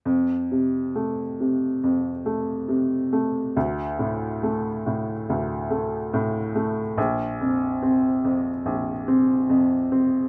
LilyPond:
\new Staff \with { instrumentName = "Upright piano" } { \clef bass \time 4/4 \key f \major \tempo 4 = 70 f,8 c8 a8 c8 f,8 a8 c8 a8 | d,8 a,8 a8 a,8 d,8 a8 a,8 a8 | bes,,8 f,8 c'8 f,8 bes,,8 c'8 f,8 c'8 | }